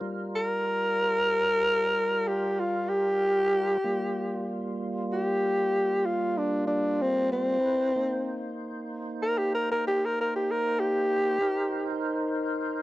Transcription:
0.00 tonewheel organ G3 F4 A#4
0.36 tenor saxophone A#4
2.28 tenor saxophone G4
2.59 tenor saxophone F4
2.89 tenor saxophone G4
3.84 tonewheel organ G3 A#3 F4
5.13 tenor saxophone G4
6.06 tenor saxophone F4
6.38 tenor saxophone D4
6.67 tenor saxophone D4
7.02 tenor saxophone C4
7.32 tenor saxophone C4
7.60 tonewheel organ E4 B4 C5
7.96 tonewheel organ A#3 D#4 C5
9.22 tenor saxophone A#4
9.38 tenor saxophone G4
9.55 tenor saxophone A#4
9.72 tenor saxophone A#4
9.87 tenor saxophone G4
10.06 tenor saxophone A#4
10.21 tenor saxophone A#4
10.36 tenor saxophone G4
10.51 tenor saxophone A#4
10.80 tenor saxophone G4
11.40 tonewheel organ D#4 A#4 C5

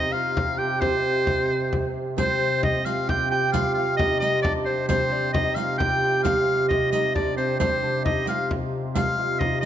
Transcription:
Already playing: pipe organ C3, hammered dulcimer C4 D#4 F4, shawm D#5
0.11 hammered dulcimer F4, recorder F5, shawm F5
0.34 recorder F5, frame drum
0.58 hammered dulcimer G4, recorder G5, shawm G5
0.80 hammered dulcimer C4, shawm C5, recorder C5, frame drum
1.27 frame drum
1.73 frame drum
1.95 frame drum
2.17 pipe organ C3, hammered dulcimer C4, recorder C5, shawm C5, riq, frame drum
2.63 recorder D#5, shawm D#5, frame drum
2.85 hammered dulcimer F4, shawm F5, recorder F5, riq
3.08 hammered dulcimer G4, recorder G5, shawm G5, frame drum
3.30 hammered dulcimer G4, shawm G5, recorder G#5
3.35 recorder G5
3.52 hammered dulcimer F4, shawm F5, recorder F5, riq, frame drum
3.74 hammered dulcimer F4, shawm F5, recorder F5
3.97 hammered dulcimer D#4, shawm D#5, recorder D#5, frame drum
4.19 hammered dulcimer D#4, shawm D#5, recorder D#5, riq
4.42 hammered dulcimer D4, shawm D5, frame drum
4.65 shawm C5, recorder C5
4.89 hammered dulcimer C4, shawm C5, recorder C5, riq, frame drum
5.12 recorder D5
5.32 hammered dulcimer D#4, recorder D#5, shawm D#5, frame drum
5.55 hammered dulcimer F4, shawm F5, recorder F5, riq
5.78 hammered dulcimer G4, shawm G5, recorder G5, frame drum
6.03 hammered dulcimer G4, recorder G5
6.19 recorder G5
6.23 hammered dulcimer F4, shawm F5, recorder F5, riq, frame drum
6.69 shawm D#5, recorder D#5, frame drum
6.91 hammered dulcimer D#4, shawm D#5, recorder D#5, riq, frame drum
7.14 hammered dulcimer D4, recorder D5, shawm D5, frame drum
7.36 hammered dulcimer C4, shawm C5, recorder C5, riq
7.59 pipe organ C3, hammered dulcimer C4, recorder C5, shawm C5, riq, frame drum
7.83 hammered dulcimer D4
8.03 hammered dulcimer D#4, recorder D#5, shawm D#5, frame drum
8.26 hammered dulcimer F4, shawm F5, recorder G5, riq
8.30 recorder F5
8.51 frame drum
8.94 hammered dulcimer F4, recorder F5, shawm F5, riq, frame drum
9.19 hammered dulcimer F4
9.39 hammered dulcimer D#4, shawm D#5, frame drum
9.61 hammered dulcimer D#4, shawm D#5, recorder D#5

